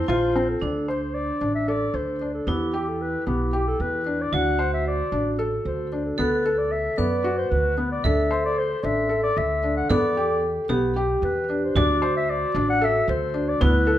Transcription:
0.00 0.84 A5 medium
0.08 0.54 A#1 medium
0.08 0.58 F4 medium
0.08 0.32 F4 medium
0.08 0.50 C5 medium
0.08 frame drum soft
0.36 0.59 C4 medium
0.49 0.88 A4 medium
0.62 1.30 D2 medium
0.62 2.53 D4 medium
0.62 0.85 D4 medium
0.88 1.16 C5 medium
0.88 1.35 C5 medium
1.14 1.54 D5 medium
1.41 1.86 A1 medium
1.41 1.65 D4 medium
1.55 1.67 E5 medium
1.68 2.15 A4 medium
1.68 1.96 D5 medium
1.94 2.39 D2 medium
1.94 2.33 C5 medium
2.21 2.45 D4 medium
2.34 2.49 A4 medium
2.47 3.15 E2 medium
2.47 2.71 B3 medium
2.47 4.39 E4 medium
2.47 2.90 G4 medium
2.74 3.21 G4 medium
2.88 3.03 A4 medium
3.02 3.26 B4 medium
3.27 3.72 B1 medium
3.27 3.50 B3 medium
3.27 3.64 G4 medium
3.53 4.00 G4 medium
3.67 3.83 A4 medium
3.80 4.25 E2 medium
3.80 4.23 B4 medium
4.06 4.30 D4 medium
4.21 4.35 D5 medium
4.32 5.01 D2 medium
4.32 4.56 D4 medium
4.32 6.24 F#4 medium
4.32 4.73 F#5 medium
4.59 5.06 C5 medium
4.73 4.85 E5 medium
4.87 5.36 D5 medium
5.12 5.58 A1 medium
5.12 5.36 D4 medium
5.39 5.86 A4 medium
5.65 6.11 D2 medium
5.65 6.03 C5 medium
5.92 6.16 D4 medium
6.05 6.18 A4 medium
6.18 6.87 D2 medium
6.18 6.42 B3 medium
6.18 7.00 A4 medium
6.18 6.59 B4 medium
6.45 6.93 A4 medium
6.58 6.73 D5 medium
6.72 6.99 E5 medium
6.98 7.44 F#2 medium
6.98 7.22 B3 medium
6.98 7.74 B4 medium
6.98 7.37 D5 medium
7.24 7.72 F#4 medium
7.38 7.52 C5 medium
7.50 7.97 D2 medium
7.50 7.91 B4 medium
7.78 8.01 B3 medium
7.92 8.05 D5 medium
8.04 8.72 D2 medium
8.04 8.28 D4 medium
8.04 9.88 A4 medium
8.04 8.44 E5 medium
8.04 frame drum medium
8.31 8.78 C5 medium
8.31 9.98 C6 medium
8.31 frame drum soft
8.45 8.60 D5 medium
8.58 8.86 C5 medium
8.83 9.29 A1 medium
8.83 9.07 D4 medium
8.83 9.23 E5 medium
8.83 frame drum soft
9.09 9.57 A4 medium
9.23 9.39 D5 medium
9.37 9.82 D2 medium
9.37 9.76 E5 medium
9.37 frame drum soft
9.63 9.87 D4 medium
9.77 9.91 F#5 medium
9.90 10.58 E2 medium
9.90 10.14 B3 medium
9.90 10.65 A4 medium
9.90 10.43 D5 medium
9.90 frame drum medium
10.17 10.64 G4 medium
10.17 frame drum soft
10.69 11.14 B1 medium
10.69 10.93 B3 medium
10.69 11.79 G4 medium
10.69 frame drum soft
10.96 11.43 G4 medium
11.22 11.67 E2 medium
11.22 11.66 B4 medium
11.22 frame drum soft
11.49 11.73 D4 medium
11.64 11.76 C5 medium
11.75 12.43 D2 medium
11.75 11.99 D4 medium
11.75 13.66 F#4 medium
11.75 12.13 D5 medium
11.75 frame drum medium
12.02 12.49 C5 medium
12.02 frame drum soft
12.16 12.32 E5 medium
12.30 12.69 D5 medium
12.55 13.00 A1 medium
12.55 12.78 D4 medium
12.55 frame drum soft
12.69 12.85 F#5 medium
12.81 13.29 A4 medium
12.81 13.09 E5 medium
13.08 13.53 D2 medium
13.08 13.50 C5 medium
13.08 frame drum soft
13.34 13.58 D4 medium
13.49 13.63 D5 medium
13.61 13.99 D2 medium
13.61 13.84 B3 medium
13.61 13.99 E4 medium
13.61 13.99 B4 medium
13.61 frame drum medium
13.87 13.99 A4 medium

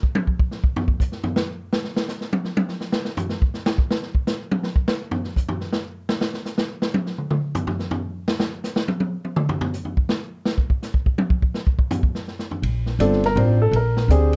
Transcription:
0.03 kick medium
0.15 high tom loud
0.27 kick medium
0.39 kick medium
0.51 snare soft
0.64 kick medium
0.76 floor tom medium
0.88 kick medium
1.00 kick medium
1.00 hi-hat pedal medium
1.12 snare soft
1.24 floor tom medium
1.36 snare loud
1.73 snare loud
1.84 snare soft
1.96 snare medium
2.08 snare medium
2.08 hi-hat pedal medium
2.21 snare soft
2.33 high tom medium
2.45 snare soft
2.57 high tom loud
2.68 snare soft
2.81 snare soft
2.92 snare medium
3.05 snare medium
3.17 floor tom medium
3.17 hi-hat pedal soft
3.29 snare medium
3.42 kick medium
3.54 snare soft
3.66 snare loud
3.78 kick medium
3.91 snare medium
4.03 snare soft
4.15 kick medium
4.27 snare medium
4.27 hi-hat pedal medium
4.51 high tom loud
4.63 snare soft
4.76 kick medium
4.88 snare medium
5.11 floor tom medium
5.24 snare soft
5.36 kick medium
5.36 hi-hat pedal soft
5.49 floor tom medium
5.61 snare soft
5.73 snare medium
6.09 snare medium
6.21 snare medium
6.34 snare soft
6.46 snare soft
6.46 hi-hat pedal medium
6.58 snare loud
6.82 snare medium
6.94 high tom loud
7.06 snare soft
7.18 mid tom medium
7.31 mid tom medium
7.55 floor tom medium
7.55 hi-hat pedal medium
7.67 floor tom loud
7.79 snare soft
7.91 floor tom medium
8.28 snare medium
8.40 snare loud
8.64 snare medium
8.64 hi-hat pedal medium
8.76 snare loud
8.88 high tom medium
9.00 high tom medium
9.25 high tom medium
9.36 mid tom loud
9.49 floor tom medium
9.61 floor tom loud
9.73 hi-hat pedal medium
9.85 floor tom soft
9.97 kick medium
10.09 snare loud
10.45 snare medium
10.58 kick medium
10.70 kick medium
10.83 snare soft
10.83 hi-hat pedal medium
10.94 kick medium
11.06 kick medium
11.18 high tom loud
11.30 kick medium
11.42 kick medium
11.54 snare medium
11.67 kick medium
11.79 kick medium
11.91 floor tom loud
11.91 hi-hat pedal soft
12.03 kick medium
12.15 snare soft
12.28 snare soft
12.39 snare soft
12.51 floor tom medium
12.62 12.98 A#1 medium
12.62 ride medium
12.86 snare soft
12.99 13.35 G1 medium
12.99 13.21 C4 medium
12.99 13.21 D4 medium
12.99 13.21 F4 medium
12.99 13.21 A4 medium
12.99 hi-hat pedal medium
12.99 ride medium
13.13 snare soft
13.24 13.38 A#4 medium
13.24 snare soft
13.24 ride soft
13.36 13.71 A1 medium
13.36 13.57 C4 medium
13.36 13.58 D4 soft
13.36 13.58 F4 medium
13.36 13.58 C5 medium
13.36 ride medium
13.62 13.74 A4 medium
13.71 14.08 A#1 medium
13.71 ride medium
13.76 14.09 A#4 medium
13.97 snare medium
14.08 14.36 D2 medium
14.08 14.31 C4 medium
14.08 14.31 D4 medium
14.08 14.31 G4 soft
14.08 14.31 G#4 medium
14.08 hi-hat pedal medium
14.08 ride medium

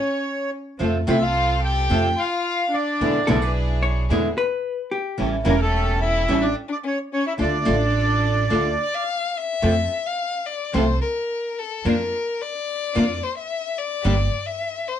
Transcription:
0.00 0.49 C#4 medium
0.00 0.50 C#5 medium
0.79 1.03 F2 medium
0.79 0.96 C3 medium
0.79 0.97 F3 medium
0.79 0.97 A3 medium
0.79 0.97 C4 medium
0.79 1.03 C4 soft
0.79 0.97 F4 medium
0.79 1.03 F4 soft
0.79 1.04 A4 soft
1.07 1.87 C2 medium
1.07 1.16 C3 medium
1.07 1.16 F3 medium
1.07 1.17 A3 medium
1.07 1.86 C4 medium
1.07 1.17 C4 medium
1.07 1.21 E4 medium
1.07 1.87 F4 medium
1.07 1.17 F4 medium
1.07 1.87 A4 medium
1.07 1.23 E5 medium
1.22 1.61 F4 medium
1.22 1.61 F5 medium
1.63 2.14 G4 medium
1.63 2.21 G5 medium
1.90 2.14 F2 medium
1.90 2.07 C3 medium
1.90 2.07 F3 medium
1.90 2.07 A3 medium
1.90 2.08 C4 medium
1.90 2.14 C4 soft
1.90 2.14 F4 soft
1.90 2.08 F4 medium
1.90 2.14 A4 soft
2.17 2.69 F4 medium
2.17 2.75 F5 medium
2.71 3.50 D4 medium
2.71 3.52 D5 medium
3.00 3.24 E2 medium
3.00 3.18 B2 medium
3.00 3.18 D3 medium
3.00 3.18 G#3 medium
3.00 3.18 B3 medium
3.00 3.23 D4 soft
3.00 3.24 E4 soft
3.00 3.18 E4 medium
3.00 3.24 G#4 soft
3.27 4.06 B1 medium
3.27 3.36 B2 medium
3.27 3.37 D3 medium
3.27 3.37 G#3 medium
3.27 3.37 B3 medium
3.27 4.06 D4 medium
3.27 4.06 E4 medium
3.27 3.37 E4 medium
3.27 4.06 G#4 medium
3.27 3.42 A4 medium
3.42 3.82 B4 medium
3.83 4.37 C#5 medium
4.10 4.33 E2 medium
4.10 4.27 B2 medium
4.10 4.27 D3 medium
4.10 4.27 G#3 medium
4.10 4.27 B3 medium
4.10 4.33 D4 soft
4.10 4.33 E4 soft
4.10 4.27 E4 medium
4.10 4.33 G#4 soft
4.38 4.94 B4 medium
4.91 5.30 G4 medium
5.18 5.42 A1 medium
5.18 5.35 E3 medium
5.18 5.35 G3 medium
5.18 5.35 C#4 medium
5.18 5.42 C#4 soft
5.18 5.36 E4 medium
5.18 5.42 G4 soft
5.18 5.42 A4 medium
5.44 6.25 E1 medium
5.44 5.54 E3 medium
5.44 5.55 G3 medium
5.44 5.58 A#3 medium
5.44 6.25 C#4 medium
5.44 5.55 C#4 loud
5.44 5.55 E4 medium
5.44 6.25 G4 medium
5.44 6.25 A4 medium
5.49 5.60 A#4 medium
5.58 5.98 A3 medium
5.58 6.00 A4 loud
6.01 6.39 E4 medium
6.01 6.44 E5 medium
6.28 6.52 A1 medium
6.28 6.45 E3 medium
6.28 6.46 G3 medium
6.28 6.46 C#4 medium
6.28 6.52 C#4 soft
6.28 6.46 E4 medium
6.28 6.52 G4 soft
6.28 6.52 A4 medium
6.41 6.54 D4 medium
6.41 6.56 D5 medium
6.68 6.75 D4 medium
6.68 6.78 D5 medium
6.84 6.96 C#4 medium
6.84 6.99 C#5 medium
7.13 7.25 C#4 medium
7.13 7.25 C#5 medium
7.27 7.33 E4 medium
7.27 7.33 E5 medium
7.38 7.63 D2 medium
7.38 7.56 D3 medium
7.38 7.56 A3 medium
7.38 7.56 D4 medium
7.38 7.63 D4 soft
7.38 8.74 D4 medium
7.38 7.56 F4 medium
7.38 7.63 F4 soft
7.38 7.63 A4 medium
7.38 9.04 D5 medium
7.65 8.46 A1 medium
7.65 7.75 D3 medium
7.65 7.75 A3 medium
7.65 7.75 D4 medium
7.65 8.46 D4 medium
7.65 7.76 F4 medium
7.65 8.46 F4 medium
7.65 8.46 A4 medium
8.50 8.74 D2 medium
8.50 8.67 D3 medium
8.50 8.67 A3 medium
8.50 8.67 D4 medium
8.50 8.74 D4 soft
8.50 8.74 F4 soft
8.50 8.68 F4 medium
8.50 8.74 A4 soft
8.80 8.96 D5 medium
8.94 9.39 F5 medium
9.37 10.07 E5 medium
9.62 9.87 F2 medium
9.62 9.72 C3 medium
9.62 9.72 F3 medium
9.62 9.72 A3 medium
9.62 9.72 C4 medium
9.62 9.86 C4 medium
9.62 9.72 F4 medium
9.62 9.86 F4 medium
9.62 9.86 A4 medium
10.06 10.48 F5 medium
10.46 10.75 D5 medium
10.73 10.98 C2 medium
10.73 10.83 C3 medium
10.73 10.83 F3 medium
10.73 10.83 A3 medium
10.73 10.83 C4 medium
10.73 10.98 C4 medium
10.73 10.84 F4 medium
10.73 10.98 F4 medium
10.73 10.98 A4 medium
10.73 11.01 C5 medium
11.01 11.60 A#4 medium
11.59 11.88 A4 medium
11.85 12.08 F2 medium
11.85 11.94 F3 medium
11.85 12.08 A#3 medium
11.85 11.94 A#3 medium
11.85 12.08 D4 medium
11.85 11.95 D4 medium
11.85 12.08 F4 medium
11.85 11.95 F4 medium
11.85 12.43 A#4 medium
12.41 13.25 D5 medium
12.95 13.19 F2 medium
12.95 13.04 F3 medium
12.95 13.04 A#3 medium
12.95 13.19 A#3 medium
12.95 13.04 D4 medium
12.95 13.19 D4 medium
12.95 13.04 F4 medium
12.95 13.19 F4 medium
13.23 13.37 C5 medium
13.38 13.80 E5 medium
13.78 14.48 D5 medium
14.04 14.28 G1 medium
14.04 14.13 D3 medium
14.04 14.13 G3 medium
14.04 14.14 A#3 medium
14.04 14.28 A#3 medium
14.04 14.14 D4 medium
14.04 14.28 D4 medium
14.04 14.14 G4 medium
14.04 14.28 G4 medium
14.46 14.89 E5 medium
14.88 15.00 C5 medium

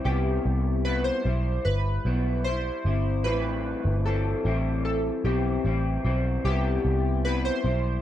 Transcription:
0.04 0.37 C2 loud
0.04 0.84 C3 medium
0.04 0.86 G3 medium
0.04 0.85 B3 medium
0.04 0.87 E4 medium
0.04 0.88 G4 medium
0.45 1.09 C2 medium
0.85 1.25 C3 medium
0.85 1.24 G3 medium
0.85 1.26 B3 medium
0.85 1.26 E4 medium
0.85 1.06 B4 loud
1.04 1.67 C5 loud
1.25 1.57 B1 medium
1.25 2.05 G3 medium
1.25 2.06 E4 medium
1.65 1.97 G1 medium
1.65 2.41 B4 medium
2.05 2.69 B1 medium
2.05 2.45 G3 medium
2.05 2.46 B3 medium
2.05 2.46 E4 medium
2.44 2.85 G3 medium
2.44 2.87 E4 medium
2.44 3.27 C5 medium
2.85 3.25 G1 medium
2.85 3.25 C3 medium
2.85 3.25 G3 medium
2.85 3.26 E4 medium
3.24 3.73 A1 loud
3.24 4.05 A2 medium
3.24 4.05 E3 medium
3.24 4.06 G3 medium
3.24 4.07 C4 medium
3.24 4.07 E4 medium
3.24 4.07 B4 medium
3.85 4.33 G1 medium
4.05 4.44 E3 medium
4.05 4.45 G3 medium
4.05 4.45 C4 medium
4.05 4.46 E4 medium
4.05 4.84 A4 medium
4.45 5.09 A1 medium
4.45 5.24 E3 medium
4.45 5.25 G3 medium
4.45 5.26 C4 medium
4.45 5.26 E4 medium
4.85 5.22 A4 medium
5.24 5.57 B1 medium
5.24 5.64 E3 medium
5.24 5.64 G3 medium
5.24 5.65 C4 medium
5.24 5.66 E4 medium
5.24 6.01 G4 medium
5.65 5.97 A1 medium
5.65 6.03 E3 soft
5.65 6.04 G3 medium
5.65 6.05 C4 medium
5.65 6.05 E4 medium
6.05 6.37 B1 medium
6.05 6.45 E3 soft
6.05 6.45 G3 medium
6.05 6.46 C4 medium
6.05 6.46 E4 medium
6.45 6.77 C2 loud
6.45 7.23 C3 medium
6.45 7.25 G3 medium
6.45 7.25 B3 medium
6.45 7.26 E4 medium
6.45 7.27 G4 medium
6.85 7.49 C2 medium
7.25 7.65 C3 medium
7.25 7.63 G3 medium
7.25 7.66 B3 medium
7.25 7.65 E4 medium
7.25 7.43 B4 loud
7.45 8.02 C5 loud
7.64 7.97 B1 medium
7.64 8.02 G3 medium
7.64 8.02 E4 medium

